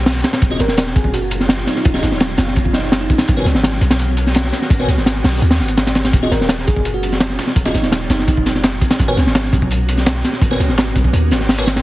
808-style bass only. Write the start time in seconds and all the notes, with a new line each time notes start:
Already playing: B1
0.42 D#1
0.60 G#1
0.69 D#1
0.96 F#1
1.86 D#1
2.03 G#1
2.12 D#1
2.38 F#1
3.29 G#1
3.45 C#2
3.54 G#1
3.81 B1
4.70 G#1
4.88 C#2
4.97 G#1
5.24 B1
5.42 D#2
5.60 G#1
6.13 D#1
6.31 G#1
6.40 D#1
6.68 F#1
7.56 D#1
7.74 G#1
7.83 D#1
8.10 F#1
8.99 G#1
9.17 C#2
9.26 G#1
9.53 B1
10.41 G#1
10.60 C#2
10.69 G#1
10.96 B1
11.13 D#2
11.31 G#1